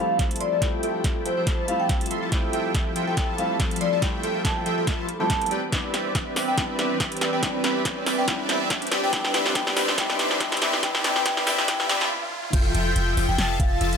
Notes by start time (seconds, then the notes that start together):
Already playing: F3 G3 A3 E4 G4 A4 F5, riser
0.00 F3 C4 E4 F4 A4 E5 A5
0.19 F3 F4 A4 E5 A5, kick, snare, closed hi-hat
0.31 closed hi-hat
0.36 closed hi-hat
0.40 F3 F4 A4 D5 E5 C6, closed hi-hat
0.52 F3 F4 A4 E5 A5
0.60 F3 G3 A3 C4 F4 A4 E5 G5, kick, snare, closed hi-hat
0.64 E4
0.83 F3 F4 A4 E5 G5, closed hi-hat
1.04 F3 F4 A4 E5 G5, kick, snare, closed hi-hat
1.26 F3 F4 A4 C5 E5 G5, closed hi-hat
1.37 F3 F4 A4 C5 E5 G5
1.47 F3 F4 A4 E5 A5, kick, snare, closed hi-hat
1.66 F3 G3 A3 C4 F4 A4 E5 F5 A5, closed hi-hat
1.70 E4
1.80 G5
1.89 F3 F4 A4 E5 A5, kick, snare, closed hi-hat
2.01 closed hi-hat
2.06 closed hi-hat
2.11 F3 F4 A4 E5 C6, closed hi-hat
2.22 F3 F4 A4 E5 A5
2.30 F3 G3 A3 C4 F4 A4 E5 G5, kick, snare, closed hi-hat
2.34 E4
2.53 F3 F4 A4 E5 G5, closed hi-hat
2.75 F3 F4 A4 E5 G5, kick, snare, closed hi-hat
2.96 F3 F4 A4 E5 G5, closed hi-hat
3.07 F3 F4 A4 E5 G5
3.17 F3 F4 A4 E5 A5, kick, snare, closed hi-hat
3.36 F3 G3 A3 C4 E4 F4 A4 E5 F5 A5, closed hi-hat
3.60 F3 F4 A4 E5 A5, kick, snare, closed hi-hat
3.71 closed hi-hat
3.76 closed hi-hat
3.81 F3 F4 A4 D5 E5 C6, closed hi-hat
3.93 F3 F4 A4 E5 A5
4.00 F3 G3 A3 C4 F4 A4 E5 G5, kick, snare, closed hi-hat
4.04 E4
4.23 F3 F4 A4 E5 G5, closed hi-hat
4.45 F3 F4 A4 E5 G5 A5, kick, snare, closed hi-hat
4.56 G5
4.66 F3 F4 A4 E5 G5, closed hi-hat
4.78 F3 F4 A4 E5 G5
4.87 F3 F4 A4 E5 A5, kick, snare, closed hi-hat
5.09 closed hi-hat
5.19 F3 G3 A3 C4 E4 F4 A4 E5 G5 A5
5.30 F3 F4 A4 E5 G5, kick, snare, closed hi-hat
5.41 closed hi-hat
5.46 closed hi-hat
5.51 E3 C4 D4 G4 B4 D5 G5, closed hi-hat
5.70 G3 B3 C4 D4 G4 B4 D5 E5, kick, snare, closed hi-hat
5.74 E4
5.94 C4 G4 B4 D5 E5, snare, closed hi-hat
6.15 C4 G4 B4 D5 E5, kick, snare, closed hi-hat
6.36 C4 G4 B4 D5 E5, snare, open hi-hat
6.48 C4 G4 B4 D5 E5 G5
6.55 G3 B3 C4 D4 G4 B4 D5 E5, kick, snare, closed hi-hat
6.59 E4
6.79 C4 G4 B4 D5 E5, snare, closed hi-hat
7.00 C4 G4 B4 D5 E5, kick, snare, closed hi-hat
7.12 closed hi-hat
7.17 closed hi-hat
7.21 C4 G4 B4 D5 E5, snare, closed hi-hat
7.33 C4 G4 B4 D5 E5 G5
7.41 G3 B3 C4 D4 G4 B4 D5 E5, kick, snare, closed hi-hat
7.45 E4
7.64 C4 G4 B4 D5 E5, snare, closed hi-hat
7.85 C4 G4 B4 D5 E5, kick, snare, closed hi-hat
8.06 C4 G4 B4 D5 E5, snare, open hi-hat
8.18 C4 G4 B4 D5 E5 G5
8.26 G3 B3 C4 D4 G4 B4 D5 E5, kick, snare, closed hi-hat
8.30 E4
8.49 C4 G4 B4 D5 E5, snare, closed hi-hat
8.70 C4 G4 B4 D5 E5, kick, snare, closed hi-hat
8.82 closed hi-hat
8.87 closed hi-hat
8.92 F3 C4 D4 E4 G4 B4 D5 E5 C6, snare, closed hi-hat
9.03 C4 G4 B4 D5 E5 G5
9.11 G3 B3 C4 D4 E4 G4 B4 D5 E5, kick, snare, closed hi-hat
9.24 snare
9.34 C4 G4 B4 D5 E5, snare, closed hi-hat
9.46 snare
9.53 G3 B3 C4 D4 E4 G4 B4 D5 E5 G5, kick, snare, closed hi-hat
9.67 snare
9.77 C4 G4 B4 D5 E5, snare, open hi-hat
9.88 snare
9.96 G3 B3 C4 D4 G4 B4 D5 E5 G5, kick, snare, closed hi-hat
10.00 E4
10.10 snare
10.19 C4 G4 B4 D5 E5, snare, closed hi-hat
10.31 snare
10.39 G3 B3 C4 D4 G4 B4 D5 E5 G5, kick, snare, closed hi-hat
10.43 E4
10.52 snare, closed hi-hat
10.57 closed hi-hat
10.62 C4 G4 B4 D5 E5, snare, closed hi-hat
10.73 snare
10.81 G3 B3 C4 D4 E4 G4 B4 D5 E5 G5, kick, snare, closed hi-hat
10.95 snare
11.02 G3 B3 C4 D4 E4 G4 B4 D5 E5 G5, snare, closed hi-hat
11.16 snare
11.24 G3 B3 C4 D4 E4 G4 B4 D5 E5 G5, kick, snare, closed hi-hat
11.37 snare
11.45 G3 B3 C4 D4 G4 B4 D5 E5 G5, snare, open hi-hat
11.49 E4
11.58 snare
11.66 G3 B3 C4 D4 G4 B4 D5 E5 G5, kick, snare, closed hi-hat
11.70 E4
11.80 snare
11.87 G3 B3 C4 D4 E4 G4 B4 D5 E5 G5, snare, closed hi-hat
12.01 snare
12.22 high tom
12.32 mid tom
12.44 mid tom
12.53 F1 F3 F4 A4 E5 G5 G6, kick, closed hi-hat, crash
12.75 F1 F3 F4 A4 E5 G5 G6, closed hi-hat
12.96 F1 F3 F4 A4 E5 G5 G6, closed hi-hat
13.17 F1 F3 F4 A4 E5 G5 G6, open hi-hat
13.29 F1 F3 F4 A4 E5 G5 G6
13.38 F1 F3 F4 A4 E5 G5 A5 A6, snare, closed hi-hat
13.60 F1 F3 F4 A4 E5 F5 A5 A6, kick, closed hi-hat
13.81 F1 F3 F4 A4 E5 A5 A6, closed hi-hat
13.93 closed hi-hat